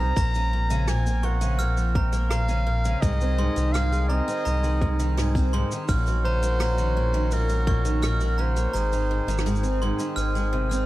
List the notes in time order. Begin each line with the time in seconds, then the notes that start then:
Already playing: D#3 C4 G#4 A#5
0.00 C2 C4
0.16 A#1 A#2 A#4 A#5, kick, open hi-hat, cabasa
0.34 C#3, open hi-hat, cabasa
0.53 A#2
0.70 C#3, open hi-hat, cabasa
0.88 A#2 G#5, cross-stick, open hi-hat, cabasa
1.05 A#3, open hi-hat, cabasa
1.23 A#2 F#5 C#6
1.41 C#3, open hi-hat, cabasa
1.59 A#2 F6, open hi-hat, cabasa
1.76 F3, open hi-hat, cabasa
1.95 C3 A#5, kick
2.13 A#3, cabasa
2.30 A#2 F5 A#5, cross-stick, open hi-hat, cabasa
2.48 C#3, open hi-hat, cabasa
2.67 A#2
2.85 C#3, cabasa
3.01 C2 G#2 D#3 G#4 D#5, kick, open hi-hat, cabasa
3.21 C4, open hi-hat, cabasa
3.38 G#2 C6
3.56 C2 D#3, open hi-hat, cabasa
3.72 G#2 F5 F6, cross-stick, open hi-hat, cabasa
3.92 G#3, open hi-hat, cabasa
4.09 C3 D#5 A#5
4.28 C4, cabasa
4.37 open hi-hat
4.45 C2 G#2 A#5, open hi-hat, cabasa
4.63 D#3, open hi-hat, cabasa
4.81 G#2, kick
5.00 D#3, cabasa
5.17 G#2, cross-stick, open hi-hat, cabasa
5.35 C4, kick, open hi-hat, cabasa
5.53 G#2 C6
5.71 D#3, cabasa
5.88 A#1 A#2 C#4 F#4 F6, kick, open hi-hat, cabasa
6.06 F#3, open hi-hat, cabasa
6.24 C#3 C5 A#5
6.42 A#3, open hi-hat, cabasa
6.48 open hi-hat
6.54 open hi-hat
6.59 A#2 A#5, cross-stick, open hi-hat, cabasa
6.65 open hi-hat
6.71 open hi-hat
6.78 D#3, open hi-hat, cabasa
6.97 A#2
7.12 D#3, open hi-hat
7.31 A#2 A#4, open hi-hat, cabasa
7.49 A#3, open hi-hat, cabasa
7.67 A#2 C#6, kick
7.85 D#3, cabasa
8.02 A#2 A#4 F6, cross-stick, open hi-hat, cabasa
8.20 F#3, open hi-hat, cabasa
8.38 C#3 C5 A#5
8.56 A#3, cabasa
8.73 G#1 G#2 C4 G#4 A#5, open hi-hat, cabasa
8.93 D#3, open hi-hat, cabasa
9.11 G#2
9.27 G#1 D#3, open hi-hat, cabasa
9.38 cross-stick, cabasa
9.46 G#2, open hi-hat, cabasa
9.56 cabasa
9.63 C4, open hi-hat, cabasa
9.82 G#2 C6
9.99 D#3, open hi-hat, cabasa
10.16 G#1 G#2 F6, open hi-hat, cabasa
10.35 G#3, open hi-hat, cabasa
10.53 C3
10.71 C4, open hi-hat, cabasa